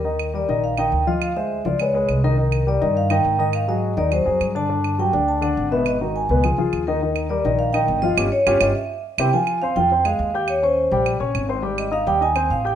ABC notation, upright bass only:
X:1
M:4/4
L:1/8
Q:1/4=207
K:Eb
V:1 name="Upright bass" clef=bass
E,,3 B,,,3 D,,2- | D,,3 _D,,3 C,,2- | C,,3 G,,3 A,,2- | A,,3 E,,2 F,, G,,2- |
G,,3 D,,3 A,,,2- | A,,,3 _D,,2 D,, E,,2- | E,,3 B,,,3 G,,,2 | G,,, z G,,, G,,, z3 C,, |
z3 F,,3 E,,2- | E,,3 B,,,2 B,,, A,,,2- | A,,,3 E,,3 =A,,,2 |]